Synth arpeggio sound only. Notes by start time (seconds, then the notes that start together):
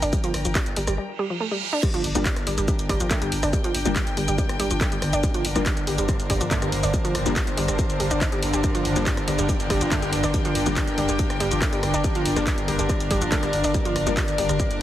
0.02 D4
0.13 G3
0.24 F3
0.45 F3
0.55 G3
0.77 G3
0.88 G3
0.98 G3
1.19 G3
1.30 F3
1.40 A3
1.51 G3
1.73 D4
1.83 G3
1.94 F3
2.15 F3
2.26 G3
2.47 G3
2.58 G3
2.68 G3
2.89 G3
3.00 F3
3.11 A3
3.22 G3
3.43 D4
3.53 G3
3.64 F3
3.85 F3
3.96 G3
4.17 G3
4.28 G3
4.38 G3
4.60 G3
4.71 F3
4.81 A3
4.92 G3
5.13 D4
5.24 G3
5.34 F3
5.56 F3
5.66 G3
5.87 G3
5.98 G3
6.09 G3
6.30 G3
6.41 F3
6.51 A3
6.62 G3
6.83 D4
6.94 G3
7.05 F3
7.26 F3
7.36 G3
7.57 G3
7.69 G3
7.79 G3
8.00 G3
8.11 D4
8.21 D#4
8.32 G3
8.53 G4
8.64 G3
8.75 F3
8.96 F3
9.06 G3
9.28 G3
9.38 G3
9.49 G3
9.70 G3
9.81 F3
9.92 A3
10.02 G3
10.24 D4
10.34 G3
10.45 F3
10.66 F3
10.77 G3
10.98 G3
11.09 G3
11.19 G3
11.40 G3
11.51 F3
11.62 A3
11.73 G3
11.94 D4
12.04 G3
12.15 F3
12.37 F3
12.47 G3
12.68 G3
12.79 G3
12.89 G3
13.11 G3
13.22 F3
13.32 A3
13.43 G3
13.64 D4
13.75 G3
13.85 F3
14.07 F3
14.17 G3
14.38 G3
14.49 G3
14.60 G3